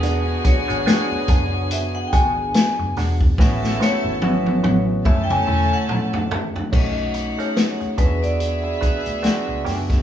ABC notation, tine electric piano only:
X:1
M:4/4
L:1/16
Q:"Swing 16ths" 1/4=72
K:Emix
V:1 name="Tine electric piano"
[B,DFG]3 z [B,DFG]4- [B,DFG] z6 z | [B,CEF]3 z [B,CEF]4 [A,CEA]6 z2 | [A,C^DF]2 z [A,CDG]3 [G,B,=D^EF]4- [G,B,DEF] z [G,B,DF]3 z |]